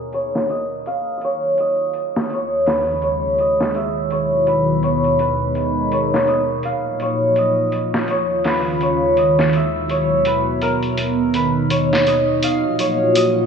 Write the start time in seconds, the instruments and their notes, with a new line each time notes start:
Already playing: analog synth pad D#3 B3 G#4 A#4, santur G#4 A#4 C#5 E5
0.13 santur C#5, closed hi-hat
0.35 snare
0.49 santur D#5, closed hi-hat
0.86 analog synth pad D#4 F#4 F5, santur F5, closed hi-hat
1.18 santur D#5, closed hi-hat
1.25 santur C#5
1.58 santur D#5, closed hi-hat
1.94 closed hi-hat
2.16 snare
2.30 analog synth pad D#3 C#4 F4 G#4, santur C#5, closed hi-hat
2.66 santur B4, snare, open hi-hat
3.02 santur C#5, closed hi-hat
3.38 santur D#5, closed hi-hat
3.60 snare
3.75 analog synth pad D#3 B3 F#4 E5, santur E5, closed hi-hat
4.11 santur C#5, closed hi-hat
4.47 santur B4, closed hi-hat
4.83 santur C#5, closed hi-hat
5.04 closed hi-hat
5.19 analog synth pad G#4 D#5 A#5, santur B4, closed hi-hat
5.55 closed hi-hat
5.92 santur C#5, closed hi-hat
6.14 snare
6.27 santur D#5, closed hi-hat
6.63 analog synth pad A#3 F4 F#4 D#5, santur F5, closed hi-hat
7.00 santur C#5, closed hi-hat
7.36 santur D#5, closed hi-hat
7.72 closed hi-hat
7.94 snare
8.08 analog synth pad D#3 C#4 G#4 F5, santur C#5, closed hi-hat
8.44 santur B4, snare, open hi-hat
8.81 santur C#5, closed hi-hat
9.17 santur D#5, closed hi-hat
9.39 snare
9.53 analog synth pad B3 F#4 E5, santur E5, closed hi-hat
9.89 santur C#5, closed hi-hat
10.25 santur B4, closed hi-hat
10.62 santur A#4, closed hi-hat
10.83 closed hi-hat
10.97 analog synth pad D#3 D#5 A#5, closed hi-hat
11.34 santur B4, closed hi-hat
11.70 santur C#5, closed hi-hat
11.93 snare
12.07 santur D#5, closed hi-hat
12.43 analog synth pad A#3 F4 F#4, santur F5, closed hi-hat
12.79 santur C#5, closed hi-hat
13.15 santur D#5, closed hi-hat